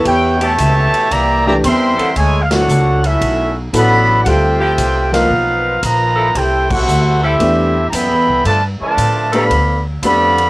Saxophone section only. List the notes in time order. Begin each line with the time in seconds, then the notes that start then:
0.41 E3 B3 C#4 G4
1.97 D3 B3 C#4 A4
4.60 F3 C4 E4 G4
6.16 G3 C4 E4 A4
7.22 G3 C4 E4 A4
9.32 G3 B3 F4 A4